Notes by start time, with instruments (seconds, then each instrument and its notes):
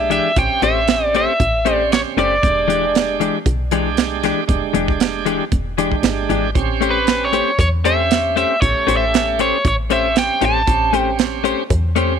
Already playing: fm bass B1, tonewheel organ G#3 D4 G4, overdriven electric guitar E5
0.10 clean electric guitar E3 G#3 D4 G4, overdriven electric guitar E5, closed hi-hat
0.36 fm bass A1, tonewheel organ C4 C#4 G4, overdriven electric guitar G5, kick, closed hi-hat
0.51 fm bass A1
0.62 fm bass A1, clean electric guitar A3 C#4 G4 C5, overdriven electric guitar E5, closed hi-hat
0.88 snare, closed hi-hat
1.15 clean electric guitar A3 C#4 G4 C5, overdriven electric guitar E5, closed hi-hat
1.40 fm bass A1, kick, closed hi-hat
1.65 clean electric guitar A3 C#4 G4 C5, tonewheel organ C4 C#4 G4, closed hi-hat
1.74 overdriven electric guitar D5
1.92 overdriven electric guitar C#5, snare, closed hi-hat
2.17 fm bass F#1, clean electric guitar A3 C#4 G4 C5, overdriven electric guitar D5, closed hi-hat
2.42 fm bass E1, tonewheel organ G#3 D4 G4, kick, closed hi-hat
2.68 clean electric guitar E3 G#3 D4 G4, closed hi-hat
2.95 snare, closed hi-hat
3.20 clean electric guitar E3 G#3 D4 G4, closed hi-hat
3.46 fm bass B1, kick, closed hi-hat
3.71 clean electric guitar E3 G#3 D4 G4, tonewheel organ G#3 D4 G4, closed hi-hat
3.97 snare, closed hi-hat
4.23 clean electric guitar E3 G#3 D4 G4, snare, closed hi-hat
4.47 fm bass E1, tonewheel organ G#3 D4 G4, kick, closed hi-hat
4.63 fm bass E1
4.73 fm bass E1, clean electric guitar E3 G#3 D4 G4, closed hi-hat
4.88 kick
5.00 snare, closed hi-hat
5.26 clean electric guitar E3 G#3 D4 G4, closed hi-hat
5.52 fm bass E1, kick, closed hi-hat
5.77 clean electric guitar E3 G#3 D4 G4, tonewheel organ G#3 D4 G4, closed hi-hat
5.91 kick
6.03 fm bass G1, snare, closed hi-hat
6.29 fm bass G#1, clean electric guitar E3 G#3 D4 G4, closed hi-hat
6.55 fm bass A1, tonewheel organ C4 C#4 G4, kick, closed hi-hat
6.81 clean electric guitar A3 C#4 G4 C5, closed hi-hat
6.91 overdriven electric guitar B4
7.07 snare, closed hi-hat
7.25 overdriven electric guitar C#5
7.33 clean electric guitar A3 C#4 G4 C5, closed hi-hat
7.59 fm bass E2, overdriven electric guitar C#5, kick, closed hi-hat
7.84 clean electric guitar A3 C#4 G4 C5, tonewheel organ C4 C#4 G4, overdriven electric guitar E5, closed hi-hat
8.11 snare, closed hi-hat
8.36 clean electric guitar A3 C#4 G4 C5, overdriven electric guitar E5, closed hi-hat
8.61 fm bass A1, tonewheel organ A3 C#4 G4, overdriven electric guitar C#5, kick, closed hi-hat
8.76 fm bass A1
8.87 fm bass A1, clean electric guitar A3 C#4 G4 C5, closed hi-hat
8.97 overdriven electric guitar E5
9.14 snare, closed hi-hat
9.39 clean electric guitar A3 C#4 G4 C5, overdriven electric guitar C#5, closed hi-hat
9.65 fm bass A1, overdriven electric guitar C#5, kick, closed hi-hat
9.89 clean electric guitar A3 C#4 G4 C5, tonewheel organ C4 C#4 G4, overdriven electric guitar E5, closed hi-hat
10.16 overdriven electric guitar G5, snare, closed hi-hat
10.41 fm bass A1, clean electric guitar A3 C#4 G4 C5, overdriven electric guitar A5, closed hi-hat
10.67 fm bass A1, tonewheel organ C4 C#4 G4, kick, closed hi-hat
10.93 clean electric guitar A3 C#4 G4 C5, closed hi-hat
10.98 overdriven electric guitar G5
11.19 snare, closed hi-hat
11.44 clean electric guitar A3 C#4 G4 C5, closed hi-hat
11.70 fm bass E2, kick, closed hi-hat
11.96 clean electric guitar A3 C#4 G4 C5, tonewheel organ C4 C#4 G4, closed hi-hat